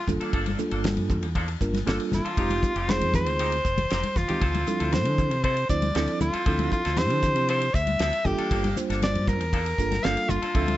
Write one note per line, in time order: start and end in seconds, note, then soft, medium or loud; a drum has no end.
0.08 0.18 G1 medium
0.08 0.49 G3 medium
0.08 0.49 A#3 medium
0.08 0.49 D4 medium
0.08 0.49 F4 medium
0.08 0.49 A4 medium
0.08 muted clean electric guitar stroke soft
0.08 kick medium
0.08 hi-hat pedal medium
0.08 high conga medium
0.08 low conga medium
0.21 0.33 A#3 soft
0.21 0.33 D4 soft
0.21 0.33 A4 medium
0.21 ride soft
0.33 0.55 G1 medium
0.33 0.46 F3 medium
0.33 0.46 A#3 medium
0.33 0.45 D4 medium
0.33 0.45 A4 medium
0.33 kick loud
0.33 ride medium
0.46 0.58 A#3 soft
0.46 0.58 D4 soft
0.46 0.59 A4 medium
0.46 ride soft
0.46 high conga medium
0.58 1.25 G3 medium
0.58 1.25 A#3 medium
0.58 1.26 D4 medium
0.58 1.26 F4 medium
0.58 1.26 A4 medium
0.58 muted clean electric guitar stroke soft
0.58 hi-hat pedal medium
0.58 high conga medium
0.71 0.99 G1 medium
0.71 0.83 A#3 soft
0.71 0.83 D4 soft
0.71 0.83 A4 medium
0.71 ride soft
0.84 muted clean electric guitar stroke soft
0.84 snare loud
0.84 ride medium
0.84 high conga medium
0.97 1.23 G2 medium
0.97 ride medium
1.10 muted clean electric guitar stroke soft
1.10 kick medium
1.10 hi-hat pedal medium
1.10 low conga medium
1.23 1.55 E2 medium
1.23 muted clean electric guitar stroke soft
1.23 ride medium
1.35 1.48 F3 medium
1.35 1.48 A#3 medium
1.35 1.48 D4 medium
1.35 1.47 A4 medium
1.35 kick medium
1.35 ride medium
1.48 muted clean electric guitar stroke soft
1.48 ride medium
1.60 1.82 G1 medium
1.60 1.77 G3 medium
1.60 1.77 A#3 medium
1.60 1.78 D4 medium
1.60 1.78 F4 medium
1.60 1.78 A#4 medium
1.60 muted clean electric guitar stroke soft
1.60 kick medium
1.60 hi-hat pedal medium
1.74 snare soft
1.74 ride medium
1.74 high conga medium
1.86 1.97 G1 medium
1.86 1.99 F3 medium
1.86 2.20 G3 medium
1.86 2.20 A#3 medium
1.86 1.99 A#3 medium
1.86 2.20 D4 medium
1.86 1.98 D4 medium
1.86 2.20 F4 medium
1.86 2.20 A4 medium
1.86 1.98 A4 medium
1.86 snare loud
1.86 ride medium
1.99 muted clean electric guitar stroke soft
1.99 ride medium
2.12 2.23 G1 medium
2.12 2.92 F4 medium
2.12 muted clean electric guitar stroke soft
2.12 snare soft
2.12 hi-hat pedal medium
2.12 high conga medium
2.12 low conga medium
2.25 2.37 A#3 soft
2.25 2.38 D4 soft
2.25 2.38 A4 soft
2.25 ride medium
2.37 2.59 F1 medium
2.37 2.50 G#3 medium
2.37 2.71 G#3 medium
2.37 2.51 C4 medium
2.37 2.71 C4 medium
2.37 2.50 D#4 medium
2.37 2.71 D#4 medium
2.37 2.72 F4 medium
2.37 2.49 G4 medium
2.37 2.72 G4 medium
2.37 kick medium
2.37 ride medium
2.50 2.62 C4 soft
2.50 2.63 D#4 soft
2.50 2.63 G4 soft
2.50 ride medium
2.50 high conga medium
2.63 muted clean electric guitar stroke soft
2.63 kick medium
2.63 hi-hat pedal medium
2.63 high conga medium
2.76 3.03 F1 medium
2.76 2.88 C4 soft
2.76 2.88 D#4 soft
2.76 2.88 G4 soft
2.76 ride medium
2.88 3.56 G#3 medium
2.88 3.56 C4 medium
2.88 3.56 D#4 medium
2.88 3.56 F4 medium
2.88 3.56 G#4 medium
2.88 3.15 C5 medium
2.88 muted clean electric guitar stroke soft
2.88 snare loud
2.88 ride medium
2.88 high conga medium
3.01 3.27 F2 medium
3.01 ride medium
3.14 4.19 C5 medium
3.14 muted clean electric guitar stroke soft
3.14 kick medium
3.14 snare soft
3.14 hi-hat pedal medium
3.14 low conga medium
3.26 3.59 D2 medium
3.26 muted clean electric guitar stroke soft
3.26 ride medium
3.39 3.53 G#3 medium
3.39 3.52 C4 medium
3.39 3.51 D#4 medium
3.39 3.51 G4 medium
3.39 ride medium
3.52 muted clean electric guitar stroke soft
3.52 ride medium
3.65 3.86 F1 medium
3.65 muted clean electric guitar stroke soft
3.65 kick medium
3.65 hi-hat pedal medium
3.78 ride medium
3.78 high conga medium
3.78 low conga medium
3.90 4.02 F1 medium
3.90 4.04 G#3 medium
3.90 4.03 C4 medium
3.90 4.03 D#4 medium
3.90 4.02 G4 medium
3.90 snare loud
3.90 ride medium
4.03 muted clean electric guitar stroke soft
4.03 ride medium
4.03 high conga soft
4.16 4.27 F1 medium
4.16 4.95 F4 medium
4.16 muted clean electric guitar stroke soft
4.16 kick medium
4.16 snare soft
4.16 hi-hat pedal medium
4.16 low conga medium
4.28 4.42 G#3 medium
4.28 4.42 C4 medium
4.28 4.40 C4 soft
4.28 4.41 D#4 soft
4.28 4.42 D#4 medium
4.28 4.42 F4 medium
4.28 4.41 G4 soft
4.28 4.42 G4 medium
4.28 ride medium
4.28 low conga medium
4.41 4.63 D2 medium
4.41 4.54 F3 medium
4.41 4.54 C4 medium
4.41 4.53 E4 medium
4.41 4.53 A4 medium
4.41 kick loud
4.41 ride medium
4.54 4.66 C4 soft
4.54 4.66 E4 soft
4.54 4.67 A4 soft
4.54 ride medium
4.54 high conga medium
4.67 5.34 F3 medium
4.67 5.34 C4 medium
4.67 5.34 D4 medium
4.67 5.34 E4 medium
4.67 5.35 A4 medium
4.67 muted clean electric guitar stroke soft
4.67 hi-hat pedal medium
4.67 high conga medium
4.80 5.06 D2 medium
4.80 4.92 C4 soft
4.80 4.92 E4 soft
4.80 4.92 A4 soft
4.80 ride medium
4.92 5.44 C5 medium
4.92 muted clean electric guitar stroke soft
4.92 snare loud
4.92 ride medium
4.92 high conga medium
5.05 5.32 D3 medium
5.05 ride medium
5.18 muted clean electric guitar stroke soft
5.18 kick medium
5.18 hi-hat pedal medium
5.18 low conga medium
5.31 5.64 C3 medium
5.31 muted clean electric guitar stroke soft
5.31 ride medium
5.43 5.57 F3 medium
5.43 5.56 C4 medium
5.43 5.56 E4 medium
5.43 5.56 A4 medium
5.43 5.68 C5 medium
5.43 kick medium
5.43 ride medium
5.57 muted clean electric guitar stroke soft
5.57 ride medium
5.69 5.91 D2 medium
5.69 5.86 F3 medium
5.69 5.86 C4 medium
5.69 5.87 D4 medium
5.69 5.87 E4 medium
5.69 5.87 C5 medium
5.69 6.17 D5 medium
5.69 muted clean electric guitar stroke soft
5.69 kick medium
5.69 hi-hat pedal medium
5.82 ride medium
5.82 high conga medium
5.95 6.06 D2 medium
5.95 6.08 F3 medium
5.95 6.29 F3 medium
5.95 6.07 C4 medium
5.95 6.29 C4 medium
5.95 6.29 D4 medium
5.95 6.07 E4 medium
5.95 6.30 E4 medium
5.95 6.07 A4 medium
5.95 6.29 A4 medium
5.95 snare loud
5.95 ride medium
6.08 muted clean electric guitar stroke soft
6.08 ride medium
6.21 6.32 D2 medium
6.21 6.69 F4 medium
6.21 muted clean electric guitar stroke soft
6.21 hi-hat pedal medium
6.21 high conga medium
6.21 low conga medium
6.33 6.45 C4 soft
6.33 6.45 E4 soft
6.33 6.45 A4 soft
6.33 muted fretless electric bass stroke soft
6.33 ride medium
6.46 6.68 D2 medium
6.46 6.59 F3 medium
6.46 6.80 F3 medium
6.46 6.59 C4 medium
6.46 6.80 C4 medium
6.46 6.80 D4 medium
6.46 6.59 E4 medium
6.46 6.81 E4 medium
6.46 6.58 A4 medium
6.46 6.80 A4 medium
6.46 kick loud
6.46 ride medium
6.59 6.71 C4 soft
6.59 6.71 E4 soft
6.59 6.71 A4 soft
6.59 ride medium
6.59 high conga medium
6.72 6.99 F4 medium
6.72 muted clean electric guitar stroke soft
6.72 kick medium
6.72 hi-hat pedal medium
6.72 high conga medium
6.85 7.11 D2 medium
6.85 6.97 C4 soft
6.85 6.97 E4 soft
6.85 6.97 A4 soft
6.85 snare soft
6.85 ride medium
6.97 7.65 F3 medium
6.97 7.65 C4 medium
6.97 7.65 D4 medium
6.97 7.65 E4 medium
6.97 7.65 G4 medium
6.97 7.49 C5 medium
6.97 muted clean electric guitar stroke soft
6.97 snare loud
6.97 ride medium
6.97 high conga medium
7.10 7.37 D3 medium
7.10 ride medium
7.22 muted clean electric guitar stroke soft
7.22 kick medium
7.22 snare soft
7.22 hi-hat pedal medium
7.22 low conga medium
7.36 7.68 C3 medium
7.36 muted clean electric guitar stroke soft
7.36 ride medium
7.49 7.62 F3 medium
7.49 7.61 C4 medium
7.49 7.61 E4 medium
7.49 7.60 A4 medium
7.49 7.76 C5 medium
7.49 ride medium
7.62 muted clean electric guitar stroke soft
7.62 ride medium
7.74 7.96 D2 medium
7.74 8.28 E5 medium
7.74 muted clean electric guitar stroke soft
7.74 kick medium
7.74 hi-hat pedal medium
7.87 ride medium
7.87 high conga medium
7.99 8.11 D2 medium
7.99 8.13 F3 medium
7.99 8.13 C4 medium
7.99 8.12 E4 medium
7.99 8.12 A4 medium
7.99 snare loud
7.99 ride medium
8.13 muted clean electric guitar stroke soft
8.13 ride medium
8.25 8.36 G1 medium
8.25 8.66 G3 medium
8.25 8.67 A#3 medium
8.25 8.67 D4 medium
8.25 8.67 F4 medium
8.25 8.75 G4 medium
8.25 8.67 A4 medium
8.25 muted clean electric guitar stroke soft
8.25 kick medium
8.25 hi-hat pedal medium
8.25 high conga medium
8.25 low conga medium
8.38 8.50 A#3 soft
8.38 8.50 D4 medium
8.38 8.51 A4 soft
8.38 muted fretless electric bass stroke soft
8.38 ride medium
8.51 8.72 G1 medium
8.51 8.64 F3 medium
8.51 8.64 A#3 medium
8.51 8.63 D4 medium
8.51 8.62 A4 medium
8.51 kick loud
8.51 ride medium
8.64 8.76 A#3 soft
8.64 8.76 D4 soft
8.64 8.76 A4 soft
8.64 ride medium
8.64 high conga medium
8.76 9.43 G3 medium
8.76 9.43 A#3 medium
8.76 9.43 D4 medium
8.76 9.44 F4 medium
8.76 9.44 C5 medium
8.76 muted clean electric guitar stroke soft
8.76 hi-hat pedal medium
8.76 high conga medium
8.90 9.17 G1 medium
8.90 9.01 A#3 soft
8.90 9.02 D4 soft
8.90 9.02 A4 soft
8.90 snare soft
8.90 ride medium
9.02 9.30 D5 medium
9.02 muted clean electric guitar stroke soft
9.02 snare loud
9.02 ride medium
9.02 high conga medium
9.15 9.41 G2 medium
9.15 ride medium
9.27 10.06 A#4 medium
9.27 muted clean electric guitar stroke soft
9.27 kick medium
9.27 hi-hat pedal medium
9.27 low conga medium
9.40 9.72 E2 medium
9.40 muted clean electric guitar stroke soft
9.40 ride medium
9.53 9.66 F3 medium
9.53 9.65 A#3 medium
9.53 9.65 D4 medium
9.53 9.65 A4 medium
9.53 kick medium
9.53 ride medium
9.66 muted clean electric guitar stroke soft
9.66 ride medium
9.78 10.00 G1 medium
9.78 9.95 G3 medium
9.78 9.96 A#3 medium
9.78 9.96 D4 medium
9.78 9.96 F4 medium
9.78 9.96 A4 medium
9.78 muted clean electric guitar stroke soft
9.78 kick medium
9.78 hi-hat pedal medium
9.92 snare soft
9.92 ride medium
9.92 high conga medium
10.04 10.15 G1 medium
10.04 10.17 F3 medium
10.04 10.37 G3 medium
10.04 10.38 A#3 medium
10.04 10.16 A#3 medium
10.04 10.38 D4 medium
10.04 10.16 D4 medium
10.04 10.38 F4 medium
10.04 10.38 A4 medium
10.04 10.16 A4 medium
10.04 10.31 F5 medium
10.04 snare loud
10.04 ride medium
10.17 muted clean electric guitar stroke soft
10.17 ride medium
10.29 10.40 G1 medium
10.29 10.77 F4 medium
10.29 muted clean electric guitar stroke soft
10.29 hi-hat pedal medium
10.29 high conga medium
10.29 low conga medium
10.42 10.55 A#3 soft
10.42 10.55 D4 soft
10.42 10.54 A4 soft
10.42 muted fretless electric bass stroke soft
10.42 ride medium
10.55 10.76 D2 medium
10.55 10.68 F3 medium
10.55 10.77 F3 medium
10.55 10.77 C4 medium
10.55 10.68 C4 medium
10.55 10.77 D4 medium
10.55 10.67 E4 medium
10.55 10.67 A4 medium
10.55 10.77 A4 medium
10.55 10.77 E5 medium
10.55 kick medium
10.55 ride medium
10.68 10.77 C4 soft
10.68 10.77 E4 soft
10.68 10.77 A4 soft
10.68 ride medium
10.68 high conga medium